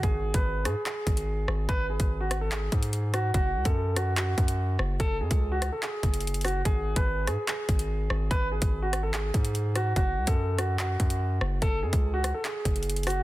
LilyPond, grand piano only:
\new Staff \with { instrumentName = "Grand piano" } { \time 4/4 \key fis \dorian \tempo 4 = 145 gis'8. b'8. gis'8 gis'2 | b'8 gis'8. fis'8 a'16 gis'4. fis'8 | fis'8. a'8. fis'8 fis'2 | a'8 gis'8. fis'8 a'16 gis'4. fis'8 |
gis'8. b'8. gis'8 gis'2 | b'8 gis'8. fis'8 a'16 gis'4. fis'8 | fis'8. a'8. fis'8 fis'2 | a'8 gis'8. fis'8 a'16 gis'4. fis'8 | }